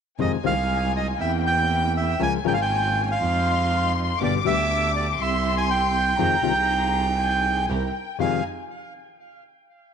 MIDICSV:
0, 0, Header, 1, 6, 480
1, 0, Start_track
1, 0, Key_signature, -4, "minor"
1, 0, Tempo, 500000
1, 185, Time_signature, 4, 2, 24, 8
1, 9540, End_track
2, 0, Start_track
2, 0, Title_t, "Violin section"
2, 0, Program_c, 0, 48
2, 193, Note_on_c, 0, 80, 77
2, 1119, Note_off_c, 0, 80, 0
2, 1149, Note_on_c, 0, 79, 73
2, 2114, Note_off_c, 0, 79, 0
2, 2117, Note_on_c, 0, 80, 79
2, 3078, Note_off_c, 0, 80, 0
2, 3080, Note_on_c, 0, 84, 80
2, 4022, Note_on_c, 0, 86, 94
2, 4030, Note_off_c, 0, 84, 0
2, 4975, Note_off_c, 0, 86, 0
2, 4980, Note_on_c, 0, 84, 92
2, 5930, Note_on_c, 0, 82, 82
2, 5934, Note_off_c, 0, 84, 0
2, 6889, Note_off_c, 0, 82, 0
2, 6891, Note_on_c, 0, 80, 70
2, 7345, Note_off_c, 0, 80, 0
2, 7378, Note_on_c, 0, 79, 56
2, 7866, Note_on_c, 0, 80, 57
2, 7870, Note_off_c, 0, 79, 0
2, 8094, Note_off_c, 0, 80, 0
2, 9540, End_track
3, 0, Start_track
3, 0, Title_t, "Bandoneon"
3, 0, Program_c, 1, 23
3, 202, Note_on_c, 1, 75, 55
3, 307, Note_off_c, 1, 75, 0
3, 442, Note_on_c, 1, 77, 66
3, 886, Note_off_c, 1, 77, 0
3, 926, Note_on_c, 1, 75, 58
3, 1032, Note_off_c, 1, 75, 0
3, 1160, Note_on_c, 1, 76, 69
3, 1267, Note_off_c, 1, 76, 0
3, 1411, Note_on_c, 1, 79, 81
3, 1850, Note_off_c, 1, 79, 0
3, 1893, Note_on_c, 1, 76, 65
3, 2132, Note_off_c, 1, 76, 0
3, 2137, Note_on_c, 1, 80, 82
3, 2241, Note_off_c, 1, 80, 0
3, 2376, Note_on_c, 1, 79, 76
3, 2429, Note_off_c, 1, 79, 0
3, 2435, Note_on_c, 1, 77, 64
3, 2497, Note_off_c, 1, 77, 0
3, 2514, Note_on_c, 1, 79, 73
3, 2895, Note_off_c, 1, 79, 0
3, 2910, Note_on_c, 1, 79, 45
3, 2967, Note_off_c, 1, 79, 0
3, 2989, Note_on_c, 1, 77, 71
3, 3768, Note_off_c, 1, 77, 0
3, 4069, Note_on_c, 1, 74, 61
3, 4167, Note_off_c, 1, 74, 0
3, 4289, Note_on_c, 1, 76, 81
3, 4720, Note_off_c, 1, 76, 0
3, 4761, Note_on_c, 1, 74, 59
3, 4863, Note_off_c, 1, 74, 0
3, 5010, Note_on_c, 1, 76, 74
3, 5328, Note_off_c, 1, 76, 0
3, 5354, Note_on_c, 1, 80, 69
3, 5468, Note_off_c, 1, 80, 0
3, 5478, Note_on_c, 1, 79, 78
3, 7352, Note_off_c, 1, 79, 0
3, 7876, Note_on_c, 1, 77, 59
3, 8100, Note_off_c, 1, 77, 0
3, 9540, End_track
4, 0, Start_track
4, 0, Title_t, "String section"
4, 0, Program_c, 2, 48
4, 180, Note_on_c, 2, 56, 38
4, 181, Note_on_c, 2, 63, 33
4, 184, Note_on_c, 2, 65, 43
4, 385, Note_off_c, 2, 56, 0
4, 386, Note_off_c, 2, 63, 0
4, 388, Note_off_c, 2, 65, 0
4, 418, Note_on_c, 2, 56, 62
4, 420, Note_on_c, 2, 63, 56
4, 421, Note_on_c, 2, 65, 69
4, 1113, Note_off_c, 2, 56, 0
4, 1114, Note_off_c, 2, 63, 0
4, 1114, Note_off_c, 2, 65, 0
4, 1141, Note_on_c, 2, 58, 71
4, 1141, Note_on_c, 2, 60, 61
4, 1143, Note_on_c, 2, 64, 71
4, 2061, Note_off_c, 2, 58, 0
4, 2061, Note_off_c, 2, 60, 0
4, 2063, Note_off_c, 2, 64, 0
4, 2108, Note_on_c, 2, 58, 41
4, 2112, Note_on_c, 2, 61, 36
4, 2115, Note_on_c, 2, 65, 47
4, 2314, Note_off_c, 2, 58, 0
4, 2316, Note_off_c, 2, 61, 0
4, 2317, Note_off_c, 2, 65, 0
4, 2348, Note_on_c, 2, 58, 67
4, 2350, Note_on_c, 2, 61, 62
4, 2353, Note_on_c, 2, 65, 72
4, 3037, Note_off_c, 2, 58, 0
4, 3038, Note_off_c, 2, 61, 0
4, 3040, Note_off_c, 2, 65, 0
4, 3070, Note_on_c, 2, 56, 69
4, 3071, Note_on_c, 2, 63, 63
4, 3071, Note_on_c, 2, 65, 72
4, 3977, Note_off_c, 2, 56, 0
4, 3977, Note_off_c, 2, 63, 0
4, 3978, Note_off_c, 2, 65, 0
4, 4028, Note_on_c, 2, 59, 39
4, 4031, Note_on_c, 2, 62, 35
4, 4033, Note_on_c, 2, 67, 50
4, 4228, Note_off_c, 2, 59, 0
4, 4230, Note_off_c, 2, 62, 0
4, 4231, Note_off_c, 2, 67, 0
4, 4265, Note_on_c, 2, 59, 67
4, 4267, Note_on_c, 2, 62, 58
4, 4271, Note_on_c, 2, 67, 75
4, 4942, Note_off_c, 2, 59, 0
4, 4943, Note_off_c, 2, 62, 0
4, 4945, Note_off_c, 2, 67, 0
4, 4975, Note_on_c, 2, 60, 69
4, 4979, Note_on_c, 2, 64, 62
4, 4983, Note_on_c, 2, 67, 81
4, 5884, Note_off_c, 2, 60, 0
4, 5886, Note_off_c, 2, 64, 0
4, 5888, Note_off_c, 2, 67, 0
4, 5928, Note_on_c, 2, 63, 40
4, 5932, Note_on_c, 2, 65, 41
4, 5934, Note_on_c, 2, 68, 47
4, 6131, Note_off_c, 2, 63, 0
4, 6133, Note_off_c, 2, 65, 0
4, 6134, Note_off_c, 2, 68, 0
4, 6169, Note_on_c, 2, 63, 70
4, 6171, Note_on_c, 2, 65, 63
4, 6173, Note_on_c, 2, 68, 75
4, 7317, Note_off_c, 2, 63, 0
4, 7317, Note_off_c, 2, 65, 0
4, 7319, Note_off_c, 2, 68, 0
4, 7381, Note_on_c, 2, 60, 53
4, 7382, Note_on_c, 2, 64, 49
4, 7384, Note_on_c, 2, 70, 67
4, 7586, Note_off_c, 2, 60, 0
4, 7587, Note_off_c, 2, 64, 0
4, 7588, Note_off_c, 2, 70, 0
4, 7873, Note_on_c, 2, 63, 43
4, 7873, Note_on_c, 2, 65, 38
4, 7873, Note_on_c, 2, 68, 50
4, 8075, Note_off_c, 2, 63, 0
4, 8076, Note_off_c, 2, 65, 0
4, 8076, Note_off_c, 2, 68, 0
4, 9540, End_track
5, 0, Start_track
5, 0, Title_t, "Nylon-string guitar"
5, 0, Program_c, 3, 24
5, 179, Note_on_c, 3, 48, 46
5, 181, Note_on_c, 3, 56, 53
5, 182, Note_on_c, 3, 51, 44
5, 187, Note_on_c, 3, 60, 47
5, 189, Note_on_c, 3, 65, 51
5, 347, Note_off_c, 3, 48, 0
5, 347, Note_off_c, 3, 56, 0
5, 348, Note_off_c, 3, 51, 0
5, 350, Note_off_c, 3, 60, 0
5, 351, Note_off_c, 3, 65, 0
5, 418, Note_on_c, 3, 48, 64
5, 423, Note_on_c, 3, 60, 74
5, 425, Note_on_c, 3, 56, 61
5, 427, Note_on_c, 3, 51, 64
5, 429, Note_on_c, 3, 65, 66
5, 510, Note_off_c, 3, 48, 0
5, 512, Note_off_c, 3, 60, 0
5, 514, Note_off_c, 3, 51, 0
5, 514, Note_off_c, 3, 56, 0
5, 515, Note_off_c, 3, 65, 0
5, 2101, Note_on_c, 3, 49, 51
5, 2105, Note_on_c, 3, 53, 47
5, 2107, Note_on_c, 3, 61, 53
5, 2110, Note_on_c, 3, 56, 50
5, 2110, Note_on_c, 3, 65, 60
5, 2114, Note_on_c, 3, 70, 52
5, 2272, Note_off_c, 3, 49, 0
5, 2274, Note_off_c, 3, 53, 0
5, 2275, Note_off_c, 3, 61, 0
5, 2276, Note_off_c, 3, 56, 0
5, 2276, Note_off_c, 3, 65, 0
5, 2278, Note_off_c, 3, 70, 0
5, 2347, Note_on_c, 3, 49, 72
5, 2349, Note_on_c, 3, 56, 67
5, 2352, Note_on_c, 3, 53, 65
5, 2354, Note_on_c, 3, 65, 70
5, 2357, Note_on_c, 3, 61, 65
5, 2358, Note_on_c, 3, 70, 72
5, 2439, Note_off_c, 3, 49, 0
5, 2440, Note_off_c, 3, 56, 0
5, 2441, Note_off_c, 3, 53, 0
5, 2442, Note_off_c, 3, 65, 0
5, 2443, Note_off_c, 3, 61, 0
5, 2444, Note_off_c, 3, 70, 0
5, 4040, Note_on_c, 3, 47, 57
5, 4044, Note_on_c, 3, 50, 52
5, 4047, Note_on_c, 3, 55, 54
5, 4048, Note_on_c, 3, 59, 52
5, 4048, Note_on_c, 3, 67, 54
5, 4196, Note_off_c, 3, 47, 0
5, 4198, Note_off_c, 3, 50, 0
5, 4200, Note_off_c, 3, 55, 0
5, 4200, Note_off_c, 3, 59, 0
5, 4200, Note_off_c, 3, 67, 0
5, 4265, Note_on_c, 3, 47, 72
5, 4272, Note_on_c, 3, 50, 72
5, 4273, Note_on_c, 3, 55, 70
5, 4278, Note_on_c, 3, 59, 80
5, 4282, Note_on_c, 3, 67, 76
5, 4351, Note_off_c, 3, 47, 0
5, 4355, Note_off_c, 3, 50, 0
5, 4356, Note_off_c, 3, 55, 0
5, 4358, Note_off_c, 3, 59, 0
5, 4360, Note_off_c, 3, 67, 0
5, 5930, Note_on_c, 3, 48, 51
5, 5935, Note_on_c, 3, 56, 54
5, 5936, Note_on_c, 3, 51, 47
5, 5939, Note_on_c, 3, 60, 55
5, 5943, Note_on_c, 3, 65, 55
5, 6094, Note_off_c, 3, 48, 0
5, 6096, Note_off_c, 3, 56, 0
5, 6097, Note_off_c, 3, 51, 0
5, 6098, Note_off_c, 3, 60, 0
5, 6100, Note_off_c, 3, 65, 0
5, 6169, Note_on_c, 3, 48, 66
5, 6175, Note_on_c, 3, 56, 70
5, 6176, Note_on_c, 3, 51, 65
5, 6177, Note_on_c, 3, 65, 76
5, 6181, Note_on_c, 3, 60, 69
5, 6256, Note_off_c, 3, 48, 0
5, 6259, Note_off_c, 3, 56, 0
5, 6260, Note_off_c, 3, 51, 0
5, 6260, Note_off_c, 3, 65, 0
5, 6262, Note_off_c, 3, 60, 0
5, 7859, Note_on_c, 3, 41, 70
5, 7861, Note_on_c, 3, 48, 64
5, 7869, Note_on_c, 3, 56, 72
5, 7871, Note_on_c, 3, 51, 61
5, 7873, Note_on_c, 3, 60, 66
5, 7874, Note_on_c, 3, 65, 67
5, 8060, Note_off_c, 3, 41, 0
5, 8061, Note_off_c, 3, 48, 0
5, 8064, Note_off_c, 3, 56, 0
5, 8065, Note_off_c, 3, 51, 0
5, 8067, Note_off_c, 3, 60, 0
5, 8067, Note_off_c, 3, 65, 0
5, 9540, End_track
6, 0, Start_track
6, 0, Title_t, "Double bass"
6, 0, Program_c, 4, 43
6, 185, Note_on_c, 4, 41, 49
6, 388, Note_off_c, 4, 41, 0
6, 421, Note_on_c, 4, 36, 77
6, 1114, Note_off_c, 4, 36, 0
6, 1152, Note_on_c, 4, 40, 84
6, 2067, Note_off_c, 4, 40, 0
6, 2113, Note_on_c, 4, 37, 51
6, 2317, Note_off_c, 4, 37, 0
6, 2351, Note_on_c, 4, 32, 74
6, 3039, Note_off_c, 4, 32, 0
6, 3075, Note_on_c, 4, 41, 86
6, 3980, Note_off_c, 4, 41, 0
6, 4037, Note_on_c, 4, 31, 51
6, 4233, Note_off_c, 4, 31, 0
6, 4273, Note_on_c, 4, 38, 73
6, 4946, Note_off_c, 4, 38, 0
6, 4985, Note_on_c, 4, 36, 84
6, 5889, Note_off_c, 4, 36, 0
6, 5939, Note_on_c, 4, 41, 53
6, 6137, Note_off_c, 4, 41, 0
6, 6178, Note_on_c, 4, 36, 74
6, 7321, Note_off_c, 4, 36, 0
6, 7382, Note_on_c, 4, 36, 77
6, 7587, Note_off_c, 4, 36, 0
6, 7879, Note_on_c, 4, 41, 47
6, 8079, Note_off_c, 4, 41, 0
6, 9540, End_track
0, 0, End_of_file